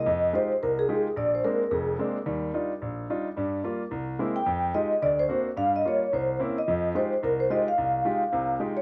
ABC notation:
X:1
M:4/4
L:1/8
Q:"Swing" 1/4=218
K:Fm
V:1 name="Vibraphone"
^d2 c2 B A2 z | =d c B2 A2 z2 | z8 | z6 z g- |
g2 e2 =d c2 z | f e d2 c2 z e- | e2 c2 B c e f- | f6 z d |]
V:2 name="Grand piano"
F,,2 [A,EFG] z C,,2 [A,EFG] z | B,,,2 [A,B,C=D] z [F,,,F,,]2 [A,B,CD] z | [E,,G,]2 [G,=DEF] z B,,,2 [G,DEF] z | [G,,G,]2 [G,B,F] z C,,2 [A,B,C=E] z |
F,,2 [A,EFG] z =D,,2 [^A,C=D^F] z | [G,,G,]2 [G,B,F] z C,,2 [B,CD=E] z | [F,,F,]2 [A,EFG] z C,,2 [A,EFG] z | C,,2 [A,EFG] z [C,,C,]2 [A,EFG] z |]